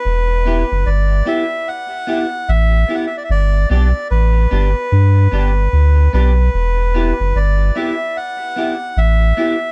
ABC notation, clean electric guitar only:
X:1
M:4/4
L:1/8
Q:"Swing 16ths" 1/4=74
K:Em
V:1 name="Clean electric guitar"
z [B,EG] z [B,EG] z [B,EG] z [B,EG] | z [B,DG] z [B,DG] z [B,DG] z [B,DG] | z [B,EG] z [B,EG] z [B,EG] z [B,EG] |]